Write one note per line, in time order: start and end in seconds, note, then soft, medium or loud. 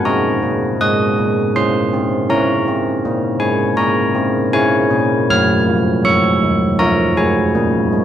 0.05 0.36 C4 medium
0.05 2.27 D#5 medium
0.05 0.79 A#5 loud
0.43 0.73 A#3 medium
0.81 1.11 G#3 medium
0.81 1.52 D#6 loud
1.18 1.48 A#3 medium
1.56 1.85 C#4 medium
1.56 2.27 C6 loud
1.93 2.23 C4 medium
2.29 2.59 C#4 medium
2.29 4.49 C#5 medium
2.29 3.37 A#5 loud
2.68 2.97 C4 medium
3.05 3.34 A#3 medium
3.40 3.70 G#3 medium
3.40 3.76 G#5 loud
3.76 4.07 A#3 medium
3.76 4.13 A#5 loud
4.15 4.45 C4 medium
4.53 4.84 C#4 medium
4.53 6.75 C#5 medium
4.53 5.27 G#5 loud
4.91 5.22 A#3 medium
5.30 5.60 F#3 loud
5.30 6.02 F6 loud
5.67 5.97 F3 medium
6.04 6.34 F#3 medium
6.04 6.76 C#6 loud
6.43 6.72 D#3 medium
6.79 7.10 F3 medium
6.79 8.05 C#5 medium
6.79 7.15 A#5 loud
7.17 7.47 F#3 medium
7.17 8.05 G#5 loud
7.55 7.85 A#3 loud
7.92 8.05 G#3 medium